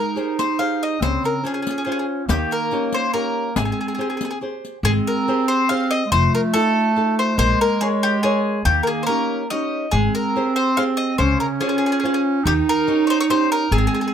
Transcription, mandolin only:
0.00 0.36 A#4 medium
0.39 0.58 C5 medium
0.59 0.82 F5 medium
0.83 1.01 D#5 medium
1.03 1.23 C5 medium
1.25 1.44 A#4 medium
1.46 1.53 G#4 medium
1.54 1.60 G#4 medium
1.62 1.68 G#4 soft
1.71 1.76 G#4 soft
1.78 1.83 G#4 medium
1.85 1.90 G#4 soft
1.92 1.97 G#4 medium
1.99 2.05 G#4 soft
2.30 2.50 G4 medium
2.52 2.92 A#4 medium
2.94 3.13 C5 loud
3.14 3.54 A#4 medium
3.57 3.64 G#4 medium
3.65 3.71 G#4 soft
3.72 3.79 G#4 soft
3.81 3.87 G#4 soft
3.88 3.93 G#4 soft
3.95 4.00 G#4 soft
4.01 4.08 G#4 medium
4.10 4.16 G#4 soft
4.17 4.24 G#4 soft
4.25 4.29 G#4 soft
4.31 4.38 G#4 soft
4.85 4.91 G#4 loud
5.07 5.48 A#4 medium
5.48 5.68 C5 loud
5.69 5.93 F5 loud
5.91 6.10 D#5 loud
6.12 6.33 C5 loud
6.35 6.40 A#4 medium
6.54 7.14 A4 loud
7.19 7.38 C5 medium
7.39 7.61 C5 loud
7.61 7.80 A#4 loud
7.81 7.87 G#4 loud
8.03 8.23 G4 loud
8.23 8.65 G#4 medium
8.65 8.81 G4 loud
8.83 9.01 G#4 medium
8.83 8.88 A#4 medium
9.03 9.47 A#4 loud
9.03 9.06 C5 medium
9.50 9.90 D#5 loud
9.91 10.13 G#4 loud
10.15 10.56 A#4 medium
10.56 10.77 C5 medium
10.77 10.83 F5 loud
10.97 11.17 D#5 loud
11.18 11.39 C5 medium
11.40 11.46 A#4 medium
11.61 11.68 G#4 medium
11.69 11.76 G#4 medium
11.78 11.84 G#4 medium
11.86 11.91 G#4 medium
11.92 11.98 G#4 medium
12.00 12.04 G#4 medium
12.05 12.12 G#4 medium
12.14 12.21 G#4 medium
12.47 12.53 G4 loud
12.69 13.05 A#4 loud
13.07 13.19 C5 loud
13.07 13.10 C#5 medium
13.20 13.25 C#5 loud
13.30 13.50 C5 loud
13.52 13.72 A#4 loud
13.72 13.77 G#4 medium
13.78 13.86 G#4 medium
13.87 13.93 G#4 medium
13.94 14.00 G#4 medium
14.01 14.06 G#4 medium
14.08 14.13 G#4 medium

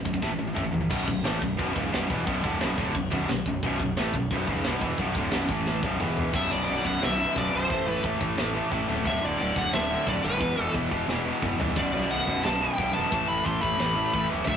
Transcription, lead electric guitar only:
6.36 6.51 E5 loud
6.52 6.83 D5 loud
6.87 7.02 F#5 loud
7.04 7.38 E5 loud
7.39 7.53 D5 medium
7.56 7.90 C5 medium
7.90 8.02 B4 medium
9.07 9.25 E5 loud
9.25 9.58 D5 loud
9.58 9.73 F#5 loud
9.73 10.05 E5 loud
10.08 10.23 D5 medium
10.24 10.71 B4 medium
11.78 12.09 D5 loud
12.11 12.42 F#5 medium
12.44 12.61 A5 loud
12.61 12.94 G5 loud
12.94 13.26 A5 loud
13.28 13.45 B5 loud
13.45 13.61 C6 loud
13.62 14.26 B5 loud
14.46 14.57 E5 loud

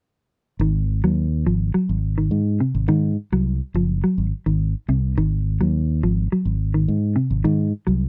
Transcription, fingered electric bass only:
0.59 1.01 G#1 medium
1.04 1.44 D#2 medium
1.46 1.73 G#1 medium
1.75 muted fingered electric bass stroke soft
1.89 2.29 G#1 medium
2.31 2.58 G#2 medium
2.75 2.87 G#1 medium
2.88 3.15 G#2 medium
3.32 3.59 C2 medium
3.74 4.01 F#1 medium
4.18 4.31 G#1 medium
4.46 4.73 G#1 medium
4.88 5.16 C2 medium
5.17 5.58 G#1 medium
5.61 6.01 D#2 medium
6.03 6.30 G#1 medium
6.32 muted fingered electric bass stroke soft
6.45 6.85 G#1 medium
6.88 7.15 G#2 medium
7.30 7.44 G#1 medium
7.45 7.72 G#2 medium
7.88 8.09 C2 medium

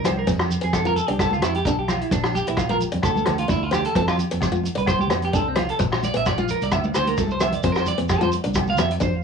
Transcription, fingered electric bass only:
0.06 0.24 C2 medium
0.28 0.55 F2 loud
0.64 1.00 F2 medium
1.09 1.43 C2 medium
1.43 1.61 F2 medium
1.65 2.01 B1 medium
2.12 2.39 A#1 loud
2.48 2.84 A#1 medium
2.94 3.02 F2 medium
3.03 3.22 D2 medium
3.28 3.45 D2 loud
3.50 3.86 D2 medium
3.96 4.24 F2 loud
4.33 4.68 F2 medium
4.77 5.11 C2 medium
5.11 5.29 F2 medium
5.33 5.70 C2 medium
5.80 6.08 A#1 loud
6.15 6.51 A#1 medium
6.62 6.70 C2 medium
6.73 6.90 D2 medium
6.97 7.14 D2 loud
7.18 7.54 C2 medium
7.64 7.92 F2 loud
7.99 8.35 F2 medium
8.46 8.79 C2 medium
8.79 8.97 F2 medium
9.02 9.24 F2 medium

